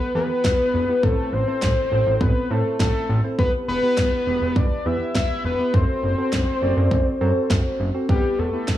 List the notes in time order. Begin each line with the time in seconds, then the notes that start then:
Already playing: B4
0.15 E2 B3 E4 G4 B4
0.44 E1, kick, snare
0.74 E1
0.89 B3 E4 G4 B4
1.03 A1 C4 E4 A4 C5, kick
1.33 A1 C5
1.47 C4 E4 A4 C5
1.62 A1, kick, snare
1.92 A1 C4 E4 A4 C5
2.06 A1
2.21 A1 B4, kick
2.50 A2 C4 E4 A4 C5
2.80 A1 A4, kick, snare
3.09 A1
3.24 C4 E4 A4 C5
3.39 E1 B3 E4 G4 B4, kick
3.68 E1 B4
3.83 B3 E4 G4 B4
3.97 E1, kick, snare
4.27 E1 B3 E4 G4 B4
4.42 E1
4.56 E1 D5, kick
4.86 E2 B3 E4 G4 B4 E5
5.15 E1 E5, kick, snare
5.44 E1 B4
5.59 B3 E4 G4 B4
5.74 F#1 C4 F#4 A4 C5, kick
6.03 F#1
6.18 C4 F#4 A4 C5
6.33 F#1, kick, snare
6.62 F#1 C4 F#4 A4 D5
6.77 F#1
6.91 F#1, kick
7.21 F#2 C4 F#4 A4 C5
7.50 F#1, kick, snare
7.80 F#1
7.94 C4 F#4 A4 C5
8.09 E1 B3 E4 G4 B4, kick
8.38 E1 A4
8.53 B3 E4 G4 B4
8.68 E1, kick, snare